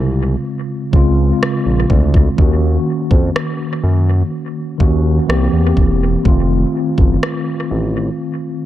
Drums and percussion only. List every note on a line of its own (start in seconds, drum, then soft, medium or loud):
0.93 kick medium
1.43 cross-stick loud
1.90 kick medium
2.14 kick medium
2.38 kick loud
3.11 kick medium
3.36 cross-stick loud
4.80 kick medium
5.30 cross-stick loud
5.77 kick medium
6.25 kick loud
6.98 kick medium
7.23 cross-stick loud